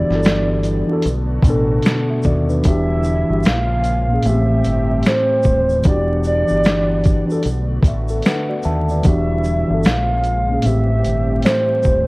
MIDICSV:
0, 0, Header, 1, 6, 480
1, 0, Start_track
1, 0, Key_signature, 1, "minor"
1, 0, Tempo, 800000
1, 1588, Time_signature, 4, 2, 24, 8
1, 7243, End_track
2, 0, Start_track
2, 0, Title_t, "Soft synth lead"
2, 0, Program_c, 0, 80
2, 0, Note_on_c, 0, 74, 100
2, 606, Note_off_c, 0, 74, 0
2, 1597, Note_on_c, 0, 76, 107
2, 2081, Note_on_c, 0, 77, 122
2, 2090, Note_off_c, 0, 76, 0
2, 2555, Note_on_c, 0, 76, 102
2, 2564, Note_off_c, 0, 77, 0
2, 3040, Note_on_c, 0, 72, 93
2, 3050, Note_off_c, 0, 76, 0
2, 3514, Note_off_c, 0, 72, 0
2, 3522, Note_on_c, 0, 74, 94
2, 3739, Note_off_c, 0, 74, 0
2, 3763, Note_on_c, 0, 74, 87
2, 4451, Note_off_c, 0, 74, 0
2, 5435, Note_on_c, 0, 76, 108
2, 5913, Note_on_c, 0, 77, 120
2, 5922, Note_off_c, 0, 76, 0
2, 6392, Note_on_c, 0, 76, 120
2, 6401, Note_off_c, 0, 77, 0
2, 6869, Note_on_c, 0, 72, 93
2, 6878, Note_off_c, 0, 76, 0
2, 7243, Note_off_c, 0, 72, 0
2, 7243, End_track
3, 0, Start_track
3, 0, Title_t, "Tine electric piano"
3, 0, Program_c, 1, 4
3, 0, Control_c, 1, 64, 127
3, 0, Note_on_c, 1, 52, 84
3, 0, Note_on_c, 1, 62, 77
3, 0, Note_on_c, 1, 66, 84
3, 0, Note_on_c, 1, 67, 100
3, 52, Note_off_c, 1, 52, 0
3, 52, Note_on_c, 1, 52, 69
3, 65, Note_off_c, 1, 62, 0
3, 65, Note_on_c, 1, 62, 71
3, 78, Note_off_c, 1, 66, 0
3, 78, Note_on_c, 1, 66, 70
3, 92, Note_on_c, 1, 69, 83
3, 456, Note_off_c, 1, 52, 0
3, 462, Note_off_c, 1, 62, 0
3, 469, Note_off_c, 1, 66, 0
3, 475, Note_off_c, 1, 69, 0
3, 518, Note_on_c, 1, 52, 80
3, 531, Note_on_c, 1, 62, 75
3, 544, Note_on_c, 1, 66, 75
3, 557, Note_on_c, 1, 69, 90
3, 619, Note_off_c, 1, 52, 0
3, 626, Note_off_c, 1, 62, 0
3, 632, Note_off_c, 1, 66, 0
3, 637, Control_c, 1, 64, 0
3, 639, Note_off_c, 1, 69, 0
3, 640, Note_off_c, 1, 67, 0
3, 730, Control_c, 1, 64, 127
3, 859, Note_on_c, 1, 47, 88
3, 872, Note_on_c, 1, 59, 79
3, 886, Note_on_c, 1, 62, 89
3, 900, Note_on_c, 1, 69, 110
3, 1117, Note_off_c, 1, 62, 0
3, 1124, Note_off_c, 1, 69, 0
3, 1263, Note_on_c, 1, 76, 58
3, 1347, Note_off_c, 1, 76, 0
3, 1353, Note_on_c, 1, 74, 80
3, 1356, Note_on_c, 1, 66, 62
3, 1491, Note_off_c, 1, 74, 0
3, 1493, Note_off_c, 1, 66, 0
3, 1497, Note_on_c, 1, 71, 64
3, 1500, Note_on_c, 1, 62, 63
3, 1510, Note_off_c, 1, 47, 0
3, 1517, Note_off_c, 1, 59, 0
3, 1579, Note_on_c, 1, 52, 77
3, 1586, Note_off_c, 1, 62, 0
3, 1593, Note_on_c, 1, 62, 79
3, 1596, Control_c, 1, 64, 0
3, 1605, Note_on_c, 1, 66, 73
3, 1620, Note_on_c, 1, 67, 107
3, 1697, Control_c, 1, 64, 127
3, 1725, Note_off_c, 1, 71, 0
3, 1913, Note_off_c, 1, 52, 0
3, 1920, Note_off_c, 1, 62, 0
3, 1926, Note_off_c, 1, 66, 0
3, 1933, Note_off_c, 1, 67, 0
3, 1959, Note_on_c, 1, 52, 73
3, 1973, Note_on_c, 1, 62, 59
3, 1986, Note_on_c, 1, 66, 72
3, 2001, Note_on_c, 1, 67, 69
3, 2060, Note_off_c, 1, 52, 0
3, 2067, Note_off_c, 1, 62, 0
3, 2073, Note_off_c, 1, 66, 0
3, 2075, Control_c, 1, 64, 0
3, 2081, Note_off_c, 1, 67, 0
3, 2190, Control_c, 1, 64, 127
3, 2446, Note_on_c, 1, 46, 69
3, 2459, Note_on_c, 1, 58, 66
3, 2473, Note_on_c, 1, 61, 66
3, 2486, Note_on_c, 1, 68, 74
3, 2533, Note_on_c, 1, 45, 79
3, 2543, Note_off_c, 1, 46, 0
3, 2548, Note_on_c, 1, 57, 73
3, 2550, Note_off_c, 1, 58, 0
3, 2555, Control_c, 1, 64, 0
3, 2557, Note_off_c, 1, 61, 0
3, 2561, Note_on_c, 1, 59, 57
3, 2563, Note_off_c, 1, 68, 0
3, 2574, Note_on_c, 1, 67, 91
3, 2601, Note_on_c, 1, 60, 82
3, 2603, Note_off_c, 1, 59, 0
3, 2647, Control_c, 1, 64, 127
3, 3399, Note_off_c, 1, 45, 0
3, 3407, Note_off_c, 1, 57, 0
3, 3420, Note_off_c, 1, 67, 0
3, 3433, Note_off_c, 1, 60, 0
3, 3497, Note_on_c, 1, 52, 77
3, 3512, Note_on_c, 1, 62, 75
3, 3515, Control_c, 1, 64, 0
3, 3524, Note_on_c, 1, 66, 84
3, 3537, Note_on_c, 1, 67, 112
3, 3638, Control_c, 1, 64, 127
3, 3831, Note_off_c, 1, 52, 0
3, 3839, Note_off_c, 1, 62, 0
3, 3845, Note_off_c, 1, 66, 0
3, 3852, Note_off_c, 1, 67, 0
3, 3880, Note_on_c, 1, 52, 75
3, 3894, Note_on_c, 1, 62, 64
3, 3907, Note_on_c, 1, 66, 61
3, 3921, Note_on_c, 1, 67, 79
3, 4290, Note_off_c, 1, 52, 0
3, 4296, Note_off_c, 1, 62, 0
3, 4303, Note_off_c, 1, 66, 0
3, 4310, Note_off_c, 1, 67, 0
3, 4352, Note_on_c, 1, 52, 84
3, 4365, Note_on_c, 1, 62, 74
3, 4378, Note_on_c, 1, 66, 70
3, 4391, Note_on_c, 1, 69, 92
3, 4456, Note_off_c, 1, 52, 0
3, 4463, Note_off_c, 1, 62, 0
3, 4469, Note_off_c, 1, 66, 0
3, 4475, Control_c, 1, 64, 0
3, 4476, Note_off_c, 1, 69, 0
3, 4596, Control_c, 1, 64, 127
3, 4726, Note_on_c, 1, 76, 64
3, 4863, Note_on_c, 1, 69, 70
3, 4941, Note_off_c, 1, 76, 0
3, 4947, Note_off_c, 1, 69, 0
3, 4954, Note_on_c, 1, 71, 62
3, 4955, Note_on_c, 1, 78, 71
3, 4957, Note_on_c, 1, 62, 55
3, 5092, Note_off_c, 1, 71, 0
3, 5093, Note_off_c, 1, 62, 0
3, 5097, Note_on_c, 1, 74, 67
3, 5099, Note_on_c, 1, 66, 57
3, 5175, Note_off_c, 1, 78, 0
3, 5184, Note_off_c, 1, 74, 0
3, 5185, Note_off_c, 1, 66, 0
3, 5191, Note_on_c, 1, 76, 78
3, 5191, Note_on_c, 1, 81, 71
3, 5330, Note_off_c, 1, 76, 0
3, 5347, Note_on_c, 1, 74, 65
3, 5350, Note_on_c, 1, 66, 52
3, 5413, Note_off_c, 1, 81, 0
3, 5415, Note_on_c, 1, 52, 88
3, 5428, Note_on_c, 1, 62, 79
3, 5434, Note_off_c, 1, 66, 0
3, 5435, Control_c, 1, 64, 0
3, 5441, Note_on_c, 1, 66, 88
3, 5454, Note_on_c, 1, 67, 86
3, 5539, Control_c, 1, 64, 127
3, 5570, Note_off_c, 1, 74, 0
3, 5750, Note_off_c, 1, 52, 0
3, 5757, Note_off_c, 1, 62, 0
3, 5764, Note_off_c, 1, 66, 0
3, 5770, Note_off_c, 1, 67, 0
3, 5805, Note_on_c, 1, 52, 77
3, 5819, Note_on_c, 1, 62, 68
3, 5831, Note_on_c, 1, 66, 57
3, 5845, Note_on_c, 1, 69, 85
3, 5902, Note_off_c, 1, 52, 0
3, 5910, Note_off_c, 1, 62, 0
3, 5916, Note_off_c, 1, 66, 0
3, 5916, Control_c, 1, 64, 0
3, 5923, Note_off_c, 1, 69, 0
3, 6019, Control_c, 1, 64, 127
3, 6285, Note_on_c, 1, 46, 67
3, 6299, Note_on_c, 1, 58, 68
3, 6312, Note_on_c, 1, 61, 63
3, 6325, Note_on_c, 1, 68, 79
3, 6365, Note_on_c, 1, 45, 77
3, 6380, Note_on_c, 1, 57, 74
3, 6383, Note_off_c, 1, 46, 0
3, 6390, Note_off_c, 1, 58, 0
3, 6393, Note_on_c, 1, 60, 76
3, 6395, Control_c, 1, 64, 0
3, 6396, Note_off_c, 1, 61, 0
3, 6403, Note_off_c, 1, 68, 0
3, 6405, Note_on_c, 1, 67, 89
3, 6518, Control_c, 1, 64, 127
3, 7235, Note_off_c, 1, 45, 0
3, 7243, Note_off_c, 1, 57, 0
3, 7243, Note_off_c, 1, 60, 0
3, 7243, Note_off_c, 1, 67, 0
3, 7243, End_track
4, 0, Start_track
4, 0, Title_t, "Analog synth pad"
4, 0, Program_c, 2, 89
4, 0, Note_on_c, 2, 50, 84
4, 0, Note_on_c, 2, 55, 68
4, 0, Note_on_c, 2, 59, 64
4, 0, Note_on_c, 2, 64, 77
4, 617, Note_off_c, 2, 50, 0
4, 617, Note_off_c, 2, 55, 0
4, 617, Note_off_c, 2, 64, 0
4, 624, Note_on_c, 2, 57, 72
4, 624, Note_on_c, 2, 66, 86
4, 625, Note_on_c, 2, 50, 81
4, 1574, Note_off_c, 2, 50, 0
4, 1576, Note_off_c, 2, 57, 0
4, 1577, Note_off_c, 2, 66, 0
4, 1580, Note_on_c, 2, 55, 63
4, 1580, Note_on_c, 2, 64, 82
4, 1581, Note_on_c, 2, 50, 73
4, 2042, Note_off_c, 2, 59, 0
4, 2059, Note_off_c, 2, 55, 0
4, 2059, Note_off_c, 2, 64, 0
4, 2060, Note_off_c, 2, 50, 0
4, 2065, Note_on_c, 2, 49, 79
4, 2065, Note_on_c, 2, 56, 72
4, 2066, Note_on_c, 2, 65, 89
4, 2067, Note_on_c, 2, 53, 65
4, 2068, Note_on_c, 2, 58, 73
4, 2542, Note_off_c, 2, 49, 0
4, 2542, Note_off_c, 2, 56, 0
4, 2542, Note_off_c, 2, 65, 0
4, 2543, Note_off_c, 2, 53, 0
4, 2543, Note_off_c, 2, 58, 0
4, 2546, Note_on_c, 2, 57, 72
4, 2547, Note_on_c, 2, 55, 79
4, 2547, Note_on_c, 2, 67, 91
4, 2548, Note_on_c, 2, 52, 77
4, 2549, Note_on_c, 2, 60, 78
4, 3498, Note_off_c, 2, 57, 0
4, 3498, Note_off_c, 2, 67, 0
4, 3499, Note_off_c, 2, 60, 0
4, 3509, Note_on_c, 2, 78, 84
4, 3510, Note_on_c, 2, 59, 77
4, 3510, Note_on_c, 2, 62, 73
4, 4449, Note_off_c, 2, 52, 0
4, 4449, Note_off_c, 2, 55, 0
4, 4459, Note_off_c, 2, 59, 0
4, 4459, Note_off_c, 2, 62, 0
4, 4459, Note_off_c, 2, 78, 0
4, 4466, Note_on_c, 2, 50, 84
4, 4467, Note_on_c, 2, 59, 71
4, 4468, Note_on_c, 2, 57, 71
4, 4470, Note_on_c, 2, 66, 90
4, 5419, Note_off_c, 2, 57, 0
4, 5419, Note_off_c, 2, 66, 0
4, 5426, Note_on_c, 2, 64, 82
4, 5427, Note_on_c, 2, 55, 68
4, 5893, Note_off_c, 2, 50, 0
4, 5893, Note_off_c, 2, 59, 0
4, 5903, Note_off_c, 2, 55, 0
4, 5903, Note_off_c, 2, 64, 0
4, 5905, Note_on_c, 2, 49, 80
4, 5905, Note_on_c, 2, 56, 66
4, 5905, Note_on_c, 2, 65, 82
4, 5906, Note_on_c, 2, 53, 63
4, 5906, Note_on_c, 2, 58, 66
4, 6382, Note_off_c, 2, 49, 0
4, 6382, Note_off_c, 2, 53, 0
4, 6382, Note_off_c, 2, 56, 0
4, 6382, Note_off_c, 2, 58, 0
4, 6382, Note_off_c, 2, 65, 0
4, 6382, Note_on_c, 2, 52, 80
4, 6382, Note_on_c, 2, 57, 75
4, 6383, Note_on_c, 2, 55, 79
4, 6383, Note_on_c, 2, 60, 70
4, 6383, Note_on_c, 2, 67, 92
4, 7243, Note_off_c, 2, 52, 0
4, 7243, Note_off_c, 2, 55, 0
4, 7243, Note_off_c, 2, 57, 0
4, 7243, Note_off_c, 2, 60, 0
4, 7243, Note_off_c, 2, 67, 0
4, 7243, End_track
5, 0, Start_track
5, 0, Title_t, "Fingered electric bass"
5, 0, Program_c, 3, 33
5, 61, Note_on_c, 3, 31, 87
5, 489, Note_off_c, 3, 31, 0
5, 632, Note_on_c, 3, 35, 101
5, 846, Note_off_c, 3, 35, 0
5, 858, Note_on_c, 3, 33, 81
5, 1078, Note_off_c, 3, 33, 0
5, 1353, Note_on_c, 3, 39, 77
5, 1566, Note_off_c, 3, 39, 0
5, 1594, Note_on_c, 3, 28, 105
5, 1939, Note_off_c, 3, 28, 0
5, 1979, Note_on_c, 3, 31, 84
5, 2060, Note_off_c, 3, 31, 0
5, 2071, Note_on_c, 3, 34, 112
5, 2501, Note_off_c, 3, 34, 0
5, 2553, Note_on_c, 3, 33, 103
5, 2766, Note_off_c, 3, 33, 0
5, 2794, Note_on_c, 3, 31, 78
5, 3007, Note_off_c, 3, 31, 0
5, 3274, Note_on_c, 3, 27, 76
5, 3487, Note_off_c, 3, 27, 0
5, 3514, Note_on_c, 3, 28, 105
5, 3859, Note_off_c, 3, 28, 0
5, 3902, Note_on_c, 3, 31, 74
5, 4330, Note_off_c, 3, 31, 0
5, 4472, Note_on_c, 3, 35, 97
5, 4686, Note_off_c, 3, 35, 0
5, 4698, Note_on_c, 3, 33, 72
5, 4918, Note_off_c, 3, 33, 0
5, 5193, Note_on_c, 3, 39, 83
5, 5406, Note_off_c, 3, 39, 0
5, 5433, Note_on_c, 3, 28, 113
5, 5779, Note_off_c, 3, 28, 0
5, 5822, Note_on_c, 3, 31, 80
5, 5902, Note_off_c, 3, 31, 0
5, 5913, Note_on_c, 3, 34, 100
5, 6342, Note_off_c, 3, 34, 0
5, 6395, Note_on_c, 3, 33, 100
5, 6607, Note_off_c, 3, 33, 0
5, 6634, Note_on_c, 3, 31, 76
5, 6847, Note_off_c, 3, 31, 0
5, 7112, Note_on_c, 3, 27, 78
5, 7243, Note_off_c, 3, 27, 0
5, 7243, End_track
6, 0, Start_track
6, 0, Title_t, "Drums"
6, 63, Note_on_c, 9, 38, 36
6, 123, Note_off_c, 9, 38, 0
6, 138, Note_on_c, 9, 82, 65
6, 150, Note_on_c, 9, 42, 74
6, 155, Note_on_c, 9, 26, 93
6, 156, Note_on_c, 9, 38, 115
6, 198, Note_off_c, 9, 82, 0
6, 210, Note_off_c, 9, 42, 0
6, 215, Note_off_c, 9, 26, 0
6, 216, Note_off_c, 9, 38, 0
6, 380, Note_on_c, 9, 42, 46
6, 380, Note_on_c, 9, 82, 51
6, 387, Note_off_c, 9, 82, 0
6, 387, Note_on_c, 9, 82, 46
6, 440, Note_off_c, 9, 42, 0
6, 447, Note_off_c, 9, 82, 0
6, 614, Note_on_c, 9, 42, 93
6, 635, Note_on_c, 9, 82, 56
6, 674, Note_off_c, 9, 42, 0
6, 695, Note_off_c, 9, 82, 0
6, 855, Note_on_c, 9, 36, 102
6, 866, Note_on_c, 9, 42, 55
6, 866, Note_on_c, 9, 82, 51
6, 867, Note_off_c, 9, 82, 0
6, 867, Note_on_c, 9, 82, 48
6, 915, Note_off_c, 9, 36, 0
6, 926, Note_off_c, 9, 42, 0
6, 927, Note_off_c, 9, 82, 0
6, 1096, Note_on_c, 9, 42, 65
6, 1112, Note_on_c, 9, 82, 68
6, 1119, Note_on_c, 9, 26, 88
6, 1119, Note_on_c, 9, 38, 119
6, 1156, Note_off_c, 9, 42, 0
6, 1172, Note_off_c, 9, 82, 0
6, 1179, Note_off_c, 9, 26, 0
6, 1179, Note_off_c, 9, 38, 0
6, 1336, Note_on_c, 9, 82, 53
6, 1339, Note_off_c, 9, 82, 0
6, 1339, Note_on_c, 9, 82, 39
6, 1350, Note_on_c, 9, 36, 86
6, 1399, Note_off_c, 9, 82, 0
6, 1410, Note_off_c, 9, 36, 0
6, 1496, Note_on_c, 9, 82, 39
6, 1556, Note_off_c, 9, 82, 0
6, 1582, Note_on_c, 9, 42, 94
6, 1583, Note_on_c, 9, 82, 67
6, 1591, Note_on_c, 9, 36, 109
6, 1643, Note_off_c, 9, 42, 0
6, 1643, Note_off_c, 9, 82, 0
6, 1651, Note_off_c, 9, 36, 0
6, 1820, Note_on_c, 9, 82, 49
6, 1826, Note_off_c, 9, 82, 0
6, 1826, Note_on_c, 9, 82, 45
6, 1886, Note_off_c, 9, 82, 0
6, 2058, Note_on_c, 9, 82, 61
6, 2072, Note_on_c, 9, 42, 81
6, 2078, Note_on_c, 9, 26, 89
6, 2079, Note_on_c, 9, 38, 112
6, 2118, Note_off_c, 9, 82, 0
6, 2132, Note_off_c, 9, 42, 0
6, 2138, Note_off_c, 9, 26, 0
6, 2139, Note_off_c, 9, 38, 0
6, 2302, Note_on_c, 9, 42, 46
6, 2302, Note_on_c, 9, 82, 47
6, 2306, Note_off_c, 9, 82, 0
6, 2306, Note_on_c, 9, 82, 56
6, 2362, Note_off_c, 9, 42, 0
6, 2366, Note_off_c, 9, 82, 0
6, 2535, Note_on_c, 9, 42, 89
6, 2554, Note_on_c, 9, 82, 54
6, 2595, Note_off_c, 9, 42, 0
6, 2614, Note_off_c, 9, 82, 0
6, 2786, Note_on_c, 9, 82, 47
6, 2787, Note_off_c, 9, 82, 0
6, 2787, Note_on_c, 9, 42, 49
6, 2787, Note_on_c, 9, 82, 53
6, 2847, Note_off_c, 9, 42, 0
6, 2847, Note_off_c, 9, 82, 0
6, 3016, Note_on_c, 9, 42, 62
6, 3030, Note_on_c, 9, 82, 68
6, 3038, Note_on_c, 9, 26, 97
6, 3039, Note_on_c, 9, 38, 114
6, 3076, Note_off_c, 9, 42, 0
6, 3090, Note_off_c, 9, 82, 0
6, 3098, Note_off_c, 9, 26, 0
6, 3099, Note_off_c, 9, 38, 0
6, 3257, Note_on_c, 9, 82, 48
6, 3258, Note_off_c, 9, 82, 0
6, 3258, Note_on_c, 9, 82, 45
6, 3270, Note_on_c, 9, 36, 75
6, 3318, Note_off_c, 9, 82, 0
6, 3330, Note_off_c, 9, 36, 0
6, 3417, Note_on_c, 9, 82, 37
6, 3477, Note_off_c, 9, 82, 0
6, 3501, Note_on_c, 9, 82, 64
6, 3502, Note_on_c, 9, 42, 89
6, 3511, Note_on_c, 9, 36, 119
6, 3561, Note_off_c, 9, 82, 0
6, 3562, Note_off_c, 9, 42, 0
6, 3571, Note_off_c, 9, 36, 0
6, 3742, Note_on_c, 9, 82, 47
6, 3747, Note_off_c, 9, 82, 0
6, 3747, Note_on_c, 9, 82, 44
6, 3807, Note_off_c, 9, 82, 0
6, 3888, Note_on_c, 9, 82, 50
6, 3948, Note_off_c, 9, 82, 0
6, 3983, Note_on_c, 9, 82, 52
6, 3991, Note_on_c, 9, 42, 73
6, 3997, Note_on_c, 9, 26, 93
6, 3998, Note_on_c, 9, 38, 111
6, 4043, Note_off_c, 9, 82, 0
6, 4051, Note_off_c, 9, 42, 0
6, 4057, Note_off_c, 9, 26, 0
6, 4058, Note_off_c, 9, 38, 0
6, 4223, Note_on_c, 9, 42, 44
6, 4223, Note_on_c, 9, 82, 51
6, 4232, Note_off_c, 9, 82, 0
6, 4232, Note_on_c, 9, 82, 52
6, 4234, Note_on_c, 9, 36, 82
6, 4283, Note_off_c, 9, 42, 0
6, 4292, Note_off_c, 9, 82, 0
6, 4294, Note_off_c, 9, 36, 0
6, 4381, Note_on_c, 9, 82, 49
6, 4441, Note_off_c, 9, 82, 0
6, 4456, Note_on_c, 9, 42, 90
6, 4475, Note_on_c, 9, 82, 51
6, 4516, Note_off_c, 9, 42, 0
6, 4535, Note_off_c, 9, 82, 0
6, 4695, Note_on_c, 9, 36, 100
6, 4706, Note_on_c, 9, 42, 51
6, 4706, Note_on_c, 9, 82, 49
6, 4709, Note_off_c, 9, 82, 0
6, 4709, Note_on_c, 9, 82, 51
6, 4755, Note_off_c, 9, 36, 0
6, 4766, Note_off_c, 9, 42, 0
6, 4769, Note_off_c, 9, 82, 0
6, 4851, Note_on_c, 9, 82, 43
6, 4911, Note_off_c, 9, 82, 0
6, 4935, Note_on_c, 9, 42, 69
6, 4952, Note_on_c, 9, 82, 65
6, 4957, Note_on_c, 9, 26, 98
6, 4958, Note_on_c, 9, 38, 112
6, 4995, Note_off_c, 9, 42, 0
6, 5012, Note_off_c, 9, 82, 0
6, 5017, Note_off_c, 9, 26, 0
6, 5018, Note_off_c, 9, 38, 0
6, 5177, Note_on_c, 9, 82, 50
6, 5237, Note_off_c, 9, 82, 0
6, 5334, Note_on_c, 9, 82, 40
6, 5394, Note_off_c, 9, 82, 0
6, 5421, Note_on_c, 9, 42, 90
6, 5423, Note_on_c, 9, 82, 72
6, 5430, Note_on_c, 9, 36, 109
6, 5481, Note_off_c, 9, 42, 0
6, 5483, Note_off_c, 9, 82, 0
6, 5490, Note_off_c, 9, 36, 0
6, 5663, Note_on_c, 9, 82, 47
6, 5666, Note_off_c, 9, 82, 0
6, 5666, Note_on_c, 9, 82, 47
6, 5726, Note_off_c, 9, 82, 0
6, 5901, Note_on_c, 9, 82, 64
6, 5910, Note_on_c, 9, 42, 76
6, 5916, Note_on_c, 9, 26, 90
6, 5917, Note_on_c, 9, 38, 119
6, 5961, Note_off_c, 9, 82, 0
6, 5970, Note_off_c, 9, 42, 0
6, 5976, Note_off_c, 9, 26, 0
6, 5977, Note_off_c, 9, 38, 0
6, 6142, Note_on_c, 9, 42, 46
6, 6142, Note_on_c, 9, 82, 47
6, 6148, Note_off_c, 9, 82, 0
6, 6148, Note_on_c, 9, 82, 53
6, 6202, Note_off_c, 9, 42, 0
6, 6208, Note_off_c, 9, 82, 0
6, 6374, Note_on_c, 9, 42, 89
6, 6395, Note_on_c, 9, 82, 54
6, 6434, Note_off_c, 9, 42, 0
6, 6455, Note_off_c, 9, 82, 0
6, 6626, Note_on_c, 9, 42, 53
6, 6626, Note_on_c, 9, 82, 51
6, 6627, Note_off_c, 9, 82, 0
6, 6627, Note_on_c, 9, 82, 49
6, 6686, Note_off_c, 9, 42, 0
6, 6687, Note_off_c, 9, 82, 0
6, 6853, Note_on_c, 9, 42, 66
6, 6871, Note_on_c, 9, 82, 69
6, 6876, Note_on_c, 9, 26, 95
6, 6877, Note_on_c, 9, 38, 113
6, 6913, Note_off_c, 9, 42, 0
6, 6931, Note_off_c, 9, 82, 0
6, 6936, Note_off_c, 9, 26, 0
6, 6937, Note_off_c, 9, 38, 0
6, 7095, Note_on_c, 9, 82, 41
6, 7098, Note_off_c, 9, 82, 0
6, 7098, Note_on_c, 9, 82, 54
6, 7109, Note_on_c, 9, 36, 75
6, 7158, Note_off_c, 9, 82, 0
6, 7169, Note_off_c, 9, 36, 0
6, 7243, End_track
0, 0, End_of_file